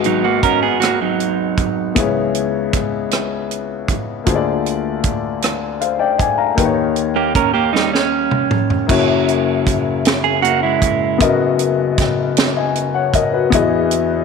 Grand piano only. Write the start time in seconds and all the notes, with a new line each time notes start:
Already playing: G#1 G#2 B3 F#4 G#4 D#5
1.95 C#2 C#3 B3 E4 G#4
2.00 C#5
4.24 D2 D3 A#3 F4 G#4
4.28 C5
4.35 D5
5.81 C5 F5
5.99 D5 G5
6.18 D5 G#5
6.38 F5 A#5
6.55 D#2 D#3 A#3 D#4 G4
6.59 B4
6.65 C#5
8.87 F#1 F#2 A#3 E4 F#4
8.91 C#5
11.18 F#1 F#2 B3 F#4 A#4 D#5
12.56 D#5 G#5
12.94 C#5 F#5
13.15 A#4 D#5
13.33 F#4 B4
13.50 E2 E3 B3 E4 G#4
13.54 D#5